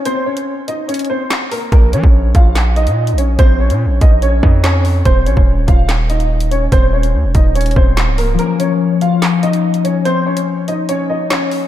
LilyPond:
<<
  \new Staff \with { instrumentName = "Grand piano" } { \time 4/4 \key bes \minor \tempo 4 = 144 <c' c''>8 <des' des''>4 <ees' ees''>8 <des' des''>8 <c' c''>4 <bes bes'>8 | <bes bes'>8 <des' des''>4 <f' f''>8 r8 <ees' ees''>4 <des' des''>8 | <c' c''>8 <des' des''>4 <ees' ees''>8 <des' des''>8 <ees' ees''>8 <des' des''>4 | <c' c''>8 <des' des''>4 <f' f''>8 r8 <ees' ees''>4 <des' des''>8 |
<c' c''>8 <des' des''>4 <ees' ees''>8 <des' des''>8 <c' c''>4 <bes bes'>8 | <bes bes'>8 <des' des''>4 <f' f''>8 r8 <ees' ees''>4 <des' des''>8 | <c' c''>8 <des' des''>4 <ees' ees''>8 <des' des''>8 <ees' ees''>8 <des' des''>4 | }
  \new Staff \with { instrumentName = "Harp" } { \time 4/4 \key bes \minor r1 | r1 | r1 | r1 |
r1 | <f bes des'>1~ | <f bes des'>1 | }
  \new Staff \with { instrumentName = "808-style bass" } { \clef bass \time 4/4 \key bes \minor r1 | bes,,8 f16 bes,,8. bes,,4~ bes,,16 bes,8~ bes,32 bes,,8~ bes,,32 | bes,,8. bes,16. bes,,16. bes,,4 f,4. | ees,,8 bes,,16 ees,,8. ees,,2~ ees,,8 |
ees,,4 ees,16 ees,,16 ees,,4 ees,,8. des,,8. | r1 | r1 | }
  \new DrumStaff \with { instrumentName = "Drums" } \drummode { \time 4/4 hh8. hh16 r8 hh8 hh32 hh32 hh32 hh8 r32 <hc hh sn>8 hho8 | <hh bd>8 hh16 bd16 r8 <hh bd>8 <hc sn>8 hh16 hh16 r16 hh16 hh8 | <hh bd>8. hh16 r8 <hh bd>8 hh8 bd8 <hc hh sn>8 hho8 | <hh bd>8 hh16 bd16 r8 <hh bd>8 <hc sn>8 hh16 hh16 r16 hh16 hh8 |
<hh bd>8. hh16 r8 <hh bd>8 hh32 hh32 hh32 hh32 bd8 <hc hh sn>8 hho8 | hh8 hh8 r8 hh8 <hc sn>8 hh16 hh16 r16 hh16 hh8 | hh8. hh16 r8 hh8 hh4 <hc hh sn>8 hho8 | }
>>